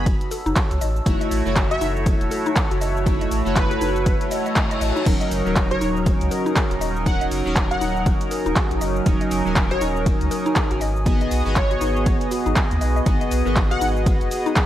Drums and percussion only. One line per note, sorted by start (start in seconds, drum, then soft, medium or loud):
0.06 kick loud
0.06 closed hi-hat medium
0.06 ride medium
0.06 shaker soft
0.21 closed hi-hat medium
0.21 shaker soft
0.31 open hi-hat loud
0.31 shaker medium
0.46 closed hi-hat soft
0.46 shaker soft
0.56 kick loud
0.56 clap loud
0.56 closed hi-hat medium
0.56 ride medium
0.56 shaker soft
0.71 closed hi-hat medium
0.71 shaker soft
0.81 open hi-hat loud
0.81 shaker medium
0.96 shaker soft
1.06 kick loud
1.06 closed hi-hat medium
1.06 ride medium
1.06 shaker soft
1.21 closed hi-hat medium
1.21 shaker soft
1.31 open hi-hat loud
1.31 shaker medium
1.46 shaker soft
1.56 kick loud
1.56 clap loud
1.56 closed hi-hat medium
1.56 ride medium
1.56 shaker soft
1.71 closed hi-hat medium
1.71 shaker soft
1.81 open hi-hat loud
1.81 shaker medium
1.96 shaker soft
2.06 kick loud
2.06 closed hi-hat medium
2.06 ride medium
2.06 shaker soft
2.21 closed hi-hat medium
2.21 shaker soft
2.31 open hi-hat loud
2.31 shaker medium
2.46 closed hi-hat soft
2.46 shaker soft
2.56 kick loud
2.56 clap loud
2.56 closed hi-hat medium
2.56 ride medium
2.56 shaker soft
2.71 closed hi-hat medium
2.71 shaker soft
2.81 open hi-hat loud
2.81 shaker medium
2.96 shaker soft
3.06 kick loud
3.06 closed hi-hat medium
3.06 ride medium
3.06 shaker soft
3.21 closed hi-hat medium
3.21 shaker soft
3.31 open hi-hat loud
3.31 shaker medium
3.46 closed hi-hat soft
3.46 shaker soft
3.56 kick loud
3.56 clap loud
3.56 closed hi-hat medium
3.56 ride medium
3.56 shaker soft
3.71 closed hi-hat medium
3.71 shaker soft
3.81 open hi-hat loud
3.81 shaker medium
3.96 closed hi-hat soft
3.96 shaker soft
4.06 kick loud
4.06 closed hi-hat medium
4.06 ride medium
4.06 shaker soft
4.21 closed hi-hat medium
4.21 shaker soft
4.31 open hi-hat loud
4.31 shaker medium
4.46 closed hi-hat soft
4.46 shaker soft
4.56 kick loud
4.56 clap loud
4.56 closed hi-hat medium
4.56 ride medium
4.56 shaker soft
4.71 closed hi-hat medium
4.71 shaker soft
4.81 open hi-hat loud
4.81 shaker medium
4.96 shaker soft
5.06 kick loud
5.06 closed hi-hat medium
5.06 crash medium
5.06 ride medium
5.06 shaker soft
5.21 closed hi-hat medium
5.21 shaker soft
5.31 open hi-hat loud
5.31 shaker medium
5.46 shaker soft
5.56 kick loud
5.56 clap loud
5.56 closed hi-hat medium
5.56 ride medium
5.56 shaker soft
5.71 closed hi-hat medium
5.71 shaker soft
5.81 open hi-hat loud
5.81 shaker medium
5.96 shaker soft
6.06 kick loud
6.06 closed hi-hat medium
6.06 ride medium
6.06 shaker soft
6.21 closed hi-hat medium
6.21 shaker soft
6.31 open hi-hat loud
6.31 shaker medium
6.46 closed hi-hat soft
6.46 shaker soft
6.56 kick loud
6.56 clap loud
6.56 closed hi-hat medium
6.56 ride medium
6.56 shaker soft
6.71 closed hi-hat medium
6.71 shaker soft
6.81 open hi-hat loud
6.81 shaker medium
6.96 shaker soft
7.06 kick loud
7.06 closed hi-hat medium
7.06 ride medium
7.06 shaker soft
7.21 closed hi-hat medium
7.21 shaker soft
7.31 open hi-hat loud
7.31 shaker medium
7.46 shaker soft
7.56 kick loud
7.56 clap loud
7.56 closed hi-hat medium
7.56 ride medium
7.56 shaker soft
7.71 closed hi-hat medium
7.71 shaker soft
7.81 open hi-hat loud
7.81 shaker medium
7.96 shaker soft
8.06 kick loud
8.06 closed hi-hat medium
8.06 ride medium
8.06 shaker soft
8.21 closed hi-hat medium
8.21 shaker soft
8.31 open hi-hat loud
8.31 shaker medium
8.46 closed hi-hat soft
8.46 shaker soft
8.56 kick loud
8.56 clap loud
8.56 closed hi-hat medium
8.56 ride medium
8.56 shaker soft
8.71 closed hi-hat medium
8.71 shaker soft
8.81 open hi-hat loud
8.81 shaker medium
8.96 shaker soft
9.06 kick loud
9.06 closed hi-hat medium
9.06 ride medium
9.06 shaker soft
9.21 closed hi-hat medium
9.21 shaker soft
9.31 open hi-hat loud
9.31 shaker medium
9.46 shaker soft
9.56 kick loud
9.56 clap loud
9.56 closed hi-hat medium
9.56 ride medium
9.56 shaker soft
9.71 closed hi-hat medium
9.71 shaker soft
9.81 open hi-hat loud
9.81 shaker medium
9.96 shaker soft
10.06 kick loud
10.06 closed hi-hat medium
10.06 ride medium
10.06 shaker soft
10.21 closed hi-hat medium
10.21 shaker soft
10.31 open hi-hat loud
10.31 shaker medium
10.46 closed hi-hat soft
10.46 shaker soft
10.56 kick loud
10.56 clap loud
10.56 closed hi-hat medium
10.56 ride medium
10.56 shaker soft
10.71 closed hi-hat medium
10.71 shaker soft
10.81 open hi-hat loud
10.81 shaker medium
10.96 shaker soft
11.06 kick loud
11.06 closed hi-hat medium
11.06 ride medium
11.06 shaker soft
11.21 closed hi-hat medium
11.21 shaker soft
11.31 open hi-hat loud
11.31 shaker medium
11.46 closed hi-hat soft
11.46 shaker soft
11.56 kick loud
11.56 clap loud
11.56 closed hi-hat medium
11.56 ride medium
11.56 shaker soft
11.71 closed hi-hat medium
11.71 shaker soft
11.81 open hi-hat loud
11.81 shaker medium
11.96 shaker soft
12.06 kick loud
12.06 closed hi-hat medium
12.06 ride medium
12.06 shaker soft
12.21 closed hi-hat medium
12.21 shaker soft
12.31 open hi-hat loud
12.31 shaker medium
12.46 closed hi-hat soft
12.46 shaker soft
12.56 kick loud
12.56 clap loud
12.56 closed hi-hat medium
12.56 ride medium
12.56 shaker soft
12.71 closed hi-hat soft
12.71 shaker soft
12.81 open hi-hat loud
12.81 shaker medium
12.96 shaker soft
13.06 kick loud
13.06 closed hi-hat medium
13.06 ride medium
13.06 shaker soft
13.21 closed hi-hat medium
13.21 shaker soft
13.31 open hi-hat loud
13.31 shaker medium
13.46 shaker soft
13.56 kick loud
13.56 clap loud
13.56 closed hi-hat medium
13.56 ride medium
13.56 shaker soft
13.71 closed hi-hat medium
13.71 shaker soft
13.81 open hi-hat loud
13.81 shaker medium
13.96 shaker soft
14.06 kick loud
14.06 closed hi-hat medium
14.06 ride medium
14.06 shaker soft
14.21 closed hi-hat medium
14.21 shaker soft
14.31 open hi-hat loud
14.31 shaker medium
14.46 closed hi-hat soft
14.46 shaker soft
14.56 kick loud
14.56 clap loud
14.56 closed hi-hat medium
14.56 ride medium
14.56 shaker soft